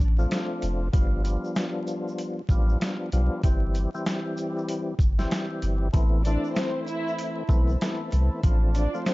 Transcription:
0.00 A1, shaker
0.18 F3 A3 C4 D4 F4, shaker
0.31 snare, closed hi-hat, shaker
0.62 F1, closed hi-hat, shaker
0.92 G1 F3 G3 B3 D4 F4, kick, closed hi-hat, shaker
1.23 F3 G3 B3 D4 F4, closed hi-hat, shaker
1.44 shaker
1.56 snare, closed hi-hat, shaker
1.87 shaker
2.08 shaker
2.18 closed hi-hat, shaker
2.49 A1 F3 G3 B3 D4 F4, kick, shaker
2.69 shaker
2.79 F3 G3 B3 D4, snare, closed hi-hat, shaker
3.12 B1 F3 G3 B3 D4 F4, closed hi-hat, shaker
3.43 G1 E3 G3 C4 E4 G4, kick, closed hi-hat, shaker
3.75 closed hi-hat, shaker
3.94 E3 G3 C4 E4 G4, shaker
4.06 E3 G3 C4 E4 G4, snare, closed hi-hat, shaker
4.37 shaker
4.58 shaker
4.69 closed hi-hat, shaker
4.99 G1, kick, shaker
5.19 E3 G3 C4 E4 G4, snare, shaker
5.31 snare, closed hi-hat, shaker
5.62 G1, closed hi-hat, shaker
5.92 A1 E3 A3 B3 C4 E4 C5 A5 B5, kick, closed hi-hat, shaker
6.25 E3 A3 C4 D4 E4 D5, closed hi-hat, shaker
6.44 shaker
6.55 C4 C5, snare, closed hi-hat, shaker
6.87 E4 E5, shaker
7.08 shaker
7.18 closed hi-hat, shaker
7.49 B1 E3 A3 B3 C4 E4, kick, shaker
7.69 shaker
7.81 E3 A3 B3 C4 E4, snare, closed hi-hat, shaker
8.11 C2 E3 A3 B3 C4 E4, closed hi-hat, shaker
8.43 A1 F3 A3 C4 D4 F4 D5 C6, kick, closed hi-hat, shaker
8.75 D4 D5, closed hi-hat, shaker
8.94 F3 A3 C4 D4 F4, shaker
9.05 F3 A3 C4 D4 F4 C5, snare, closed hi-hat, shaker

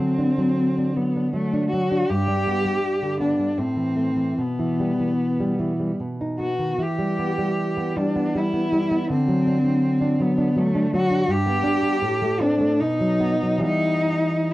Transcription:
Already playing: D3 C4
0.00 F#3
0.18 D4
0.38 F#3
0.78 D4
0.96 F#3 B3
1.16 D4
1.33 F#3 A3
1.53 D4
1.71 F#3 F#4
1.91 D4
2.10 G2 G4
2.28 G3
2.47 B3
2.65 G3
3.02 D3
3.20 B3 D4
3.39 G3
3.58 A2 C4
3.76 E3
3.96 A3
4.16 E3
4.38 B2 B3
4.59 E3
4.80 G3
4.99 E3
5.40 G3
5.59 E3
5.80 G3
6.00 B2
6.21 D#4
6.39 B3 F#4
6.59 D#3
6.78 E3
6.82 G4
6.98 G3
7.19 B3
7.38 G3
7.77 B3
7.96 G3 D4
8.16 B3
8.35 G3 E4
8.53 B3
8.72 G3
8.91 B3
9.10 D3 C4
9.28 F#3
9.47 D4
9.64 F#3
10.01 D4
10.20 F#3 B3
10.38 D4
10.56 F#3 A3
10.75 D4
10.93 F#3 F#4
11.10 D4
11.28 G2 G4
11.46 B3
11.63 D4
11.82 B3
12.02 A2
12.22 A3
12.40 C4 D4
12.60 A3
12.80 B2 D#4
13.01 F#3
13.20 B3
13.42 F#3
13.58 E3 G3 B3
13.64 D#4

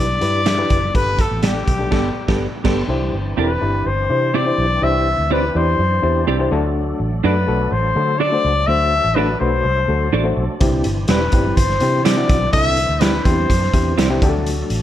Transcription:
Already playing: B1 G3 D4 E4 D5
0.21 G2 D4 E4 G4 B4, closed hi-hat
0.46 D4 G4 B4 E5, snare, closed hi-hat
0.57 D4 E4 G4 B4
0.70 F#1, kick, closed hi-hat
0.94 G1 A3 B3 D4 G4 A4 B4, kick, closed hi-hat
1.18 A4, kick, closed hi-hat
1.31 A1
1.43 B3 D4 G4 A4 D5, snare, closed hi-hat
1.67 B1, kick, closed hi-hat
1.79 D4 G4 A4 D5
1.91 G1 B3 D4 G4 A4 D5, kick, snare, crash
2.28 G1 B3 D4 G4 A4 B4 D5, kick, snare
2.64 G1 B3 D4 G4 A4 B4 D5, kick, snare, crash
2.88 C2 E3 C4 D4 E4 G4 C5
3.13 G1
3.37 E1 C4 D4 E4 G4 A4 B4 D5
3.61 G1 D4 E4 G4 B4
3.86 G1 C5
4.10 C3 D4 E4 G4 C5
4.34 C4 E4 G4 D5
4.45 D4 E4 G4 C5
4.58 B1
4.82 C2 D4 E4 G4 C5 E5
5.18 D2
5.30 C4 D4 E4 G4 B4 C5 D5
5.55 E2 D4 E4 G4 C5 D5
5.79 F#2
6.02 E2 D4 E4 G4 C5
6.27 C2 C4 E4 G4 D5
6.39 D4 E4 G4 C5
6.51 D2 F#3 A3 D4 F#4 A4
7.00 A1
7.24 F#2 A3 D4 F#4 A4 B4 D5
7.47 B1 A3 D4 F#4 A4
7.72 A1 C5
7.95 D3 A3 D4 F#4 A4
8.19 D4 F#4 A4 D5
8.32 A3 D4 F#4 C5
8.45 C#2
8.67 D2 A3 D4 F#4 C5 E5
9.04 A1
9.15 A3 D4 F#4 A4 B4 D5
9.40 B1 A3 D4 F#4 B4 C5
9.64 C2
9.88 D2 A3 D4 F#4 A4
10.12 A1 D4 F#4 A4 D5
10.24 A3 D4 F#4 C5
10.37 B1
10.60 C2 E3 C4 D4 E4 G4, kick, closed hi-hat
10.84 G1, closed hi-hat
11.08 E1 C4 D4 E4 G4 B4 D5, snare, closed hi-hat
11.32 G1 C4 D4 E4 G4, kick, closed hi-hat
11.56 G1 C5, kick, closed hi-hat
11.70 snare
11.80 C3 C4 D4 E4 G4, closed hi-hat
12.04 C4 E4 G4 D5, snare, closed hi-hat
12.17 C4 D4 E4 F#4
12.29 B1, kick, closed hi-hat
12.52 C2 C4 D4 E4 A4 E5, kick, closed hi-hat
12.77 closed hi-hat
12.89 D2
13.00 C4 D4 E4 G4 B4 D5, snare, closed hi-hat
13.14 snare
13.24 E2 C4 D4 E4 G4 C5, kick, closed hi-hat
13.50 F#2, kick, closed hi-hat
13.63 snare
13.73 E2 C4 D4 E4 G4, kick, closed hi-hat
13.98 C2 C4 E4 G4 D5, snare, closed hi-hat
14.09 C4 D4 E4 G4
14.21 D2 F#3 A3 D4 F#4 G4, kick, closed hi-hat
14.29 A4
14.46 closed hi-hat
14.70 A1, closed hi-hat

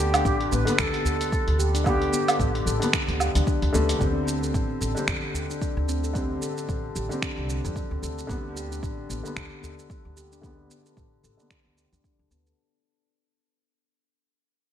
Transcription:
Already playing: D2 D3 G3 B3 G4
0.00 G4
0.14 D4, closed hi-hat, low woodblock, shaker
0.25 A1 D4, kick, shaker
0.41 closed hi-hat
0.52 A1 B3 B4, shaker
0.65 D3 G3 B3 A4, closed hi-hat, shaker
0.79 D2 A4, finger snap, kick, shaker
0.94 closed hi-hat
1.05 A4, udu, shaker
1.21 closed hi-hat, shaker
1.32 kick, shaker
1.48 D2, closed hi-hat
1.59 G4, shaker
1.74 D4, closed hi-hat, shaker
1.84 D3 G3 D4 G4, kick, low woodblock, shaker
1.88 B3
2.02 closed hi-hat
2.13 B3, shaker
2.28 A4, closed hi-hat, low woodblock, shaker
2.40 A1, kick, shaker
2.55 closed hi-hat
2.66 A1 A4, shaker
2.79 D3 G3, closed hi-hat, shaker
2.84 B3
2.93 finger snap, kick, shaker
3.08 D2, closed hi-hat
3.20 G4, low woodblock, shaker
3.35 D2 D4, closed hi-hat, udu, shaker
3.47 D4, kick, shaker
3.62 D2, closed hi-hat
3.73 D2 D3 G3 A3 B3, shaker
3.89 A4, closed hi-hat, shaker
3.99 D2 D3 G3 D4, kick, shaker
4.03 C4
4.28 C4, shaker
4.43 A4, shaker
4.54 A1, kick, shaker
4.81 A1 A4, shaker
4.95 D3 G3 C4, shaker
5.08 F2, finger snap, kick, shaker
5.34 G4, udu, shaker
5.50 D4, shaker
5.61 D4, kick, shaker
5.77 D2
5.88 C4, shaker
6.04 A4, shaker
6.13 D3 G3 C4, kick, shaker
6.42 A4, shaker
6.57 shaker
6.69 A1, kick, shaker
6.96 A1 G4, shaker
7.09 D3 G3 D4, shaker
7.13 C4
7.22 finger snap, kick, shaker
7.38 C2
7.49 C4, shaker
7.64 F2 A4, udu, shaker
7.76 kick, shaker
7.91 D2
8.03 D2 A4, shaker
8.18 shaker
8.27 D2 D3 G3 B3, kick, shaker
8.56 G4, shaker
8.72 D4, shaker
8.83 A1 D4, kick, shaker
9.09 A1 B3, shaker
9.23 D3 G3 B3 A4, shaker
9.36 D2, finger snap, kick, shaker
9.63 A4, udu, shaker
9.79 shaker
9.90 kick, shaker
10.05 D2
10.17 G4, shaker
10.32 D4, shaker
10.41 D3 G3 D4, kick, shaker
10.46 B3
10.70 B3, shaker
10.86 A4, shaker
10.97 A1, kick, shaker
11.24 A1 A4, shaker
11.37 D3 G3, shaker
11.41 B3
11.50 finger snap, kick, shaker
11.65 D2
11.77 G4, shaker
11.92 D2 D4, udu, shaker
12.04 D4, kick, shaker
12.19 D2
12.31 D2 B3, shaker
12.46 A4, shaker

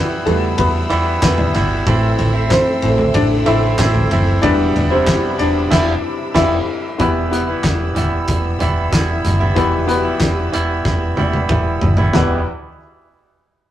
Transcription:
Already playing: E3 G3 B3 E4 B4 E5 B5 E6
0.26 E2 E3 G3 A3 B3 A4, ride
0.57 E2 B3 B4, kick, ride
0.90 E2 E3 G3 B3 E4, ride
1.22 E2 E3 G3 B3 E4 B4, kick, snare, clap, ride
1.38 floor tom
1.54 G1 E3 G3 B3 E4, snare, floor tom, ride
1.86 A1 A2 E3 A3 C4 E4 A4 C6, kick, ride
2.18 A1, floor tom, ride
2.34 A3 C4 E4
2.49 C4 C5, kick, snare, clap, ride
2.82 A1 E3 A3 C4, ride
2.98 floor tom
3.14 A1 D4 D5, kick, ride
3.46 A1 E3 A3 C4 E4 E5, ride
3.78 A1 E3 A3 C4 E4, kick, snare, clap, ride
3.94 floor tom
4.10 F#1 E3 A3 C4 E4, floor tom, ride
4.42 E1 E2 B2 E3 G3 B3 D4 E4 G4 B4 D5 B5, kick, ride
4.76 E1, floor tom, ride
4.90 C3 E3 G3 B3 E4 C5
5.07 kick, snare, clap, ride
5.38 E1 D4 D5, ride
5.71 E1 E3 G3 B3 E4 E5, kick, snare, crash
6.35 E1 E3 G3 B3 E4 E5, kick, snare, crash
6.98 E1 E2 B2 E3 G3 B3 E4 G4 B4 E5 B5 E6, kick, closed hi-hat
7.31 B3 E4 G4 B4, closed hi-hat
7.47 E3 G3 B3 E4
7.63 E1, kick, snare, clap, closed hi-hat
7.95 E1 E3 G3 B3 E4, closed hi-hat, floor tom
8.28 E1, kick, closed hi-hat
8.59 E1 E3 G3 B3 E4, closed hi-hat, floor tom
8.92 E1 E3 G3 B3 E4, kick, snare, clap, closed hi-hat
9.25 F#1, snare, closed hi-hat, floor tom
9.40 E3 G3 B3 E4, floor tom
9.55 E1 E2 B2 E3 G3 B3 E4 G4 B4, kick, closed hi-hat
9.87 B3 E4 F#4 B4, closed hi-hat
9.94 G4
10.04 E3 G3 B3 E4
10.20 E1, kick, snare, clap, closed hi-hat
10.52 E1 E3 G3 B3 E4, closed hi-hat
10.85 E1, kick, snare
11.17 E1 E3 G3 B3 E4, high tom
11.33 high tom
11.49 E1 E3 G3 B3 E4, kick, mid tom
11.81 F#1, floor tom
11.97 E3 G3 B3 E4, floor tom
12.12 E1 E2 B2 E3 G3 B3 E4 G4 B4 G5, snare, floor tom
12.16 B3 E4

